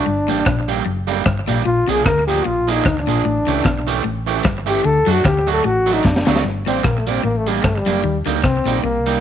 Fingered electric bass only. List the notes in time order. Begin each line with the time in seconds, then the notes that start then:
0.08 G1
0.29 A1
0.46 A#1
0.87 F#1
1.26 G1
1.49 A#1
1.67 A#1
1.88 C2
2.06 D2
2.46 A#1
2.86 D2
3.08 A#1
3.25 A1
3.47 C#2
3.65 B1
4.05 A1
4.45 G1
4.85 D2
5.07 F#2
5.25 D2
5.65 A1
6.05 F#1
6.27 D2
6.45 G1
6.67 A1
6.84 A#1
7.25 A1
7.64 G1
7.87 F#1
8.04 D#2
8.26 D2
8.44 C2
8.66 A#1
8.84 C2